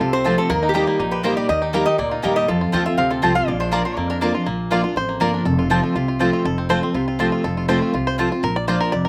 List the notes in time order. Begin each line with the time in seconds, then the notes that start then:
Already playing: F3 C4 A4
0.00 C2 C3 F4
0.13 C4 C5
0.24 F3 A3 C4 F4 C5 A5
0.38 F4 A4
0.50 D#2 D#3 A#3 A#4
0.63 D#4
0.69 G4
0.74 G3 A#3 D#4 G4 D#5 A#5
0.87 A#3
0.99 A#1 A#2 D#4
1.11 G4 B4
1.23 G3 A#3 D#4 G4 A#4 C5 D#5 A#5
1.37 G4 D5
1.49 D#2 D#3 G4 D#5
1.62 D#4 G4
1.73 G3 A#3 D#4 G4 A#4 D#5 A#5
1.85 D#4 G4 D#5
1.98 D2 A#2 A#3 D5
2.11 D#4 F4
2.22 D#2 G3 A#3 D#4 G4 A#4 D#5 A#5
2.36 G4 D#5
2.48 F2 F4 A4
2.61 F4
2.72 D#2 F3 A3 C4 F4 C5 A5
2.86 C4 F4 E5
2.97 D2 C3 C4 F5
3.10 F4 A4
3.22 C2 F3 A3 C4 F4 C5 A5
3.35 C4 F4 F5
3.47 A#1 A#2 F4 D5
3.60 D4 C5
3.71 F3 A#3 D4 F4 A#4 D5 A#5
3.85 D4 F4 C5
3.97 F2 A#3 D5
4.10 D4 A#4
4.21 F3 A#3 D4 F4 A#4 D5 A#5
4.34 D4 F4
4.46 A#1 A#2 A#3
4.71 F3 A#3 D4 F4 D5 A#5
4.84 D4 F4
4.96 A1 F2 C5
5.09 A#3
5.20 G1 F3 A#3 D4 F4 A#4 D5 A#5
5.34 D4
5.45 F1 F2 A4
5.59 F4
5.70 F3 A3 C4 F4 C5 A5
5.84 F4
5.95 C2 C3 F4
6.08 F4
6.19 F3 A3 C4 F4 C5 A5
6.33 F4
6.45 F1 F2 A4
6.58 C4
6.69 F3 A3 C4 F4 C5 A5
6.82 C4 F4
6.94 C2 C3 F4
7.08 F4
7.19 F3 A3 C4 F4 C5 A5
7.32 F4
7.44 F1 F2 A4
7.57 F4
7.68 F3 A3 C4 F4 C5 A5
7.82 F4
7.94 C2 C3 F4
8.07 C5
8.18 F3 A3 C4 F4 C5 A5
8.31 C4 F4
8.43 A#1 A#2 A#4
8.56 D5
8.68 F3 A#3 D4 F4 C5 D5 A#5
8.81 A#4
8.92 F1 F2 D5
9.05 A#4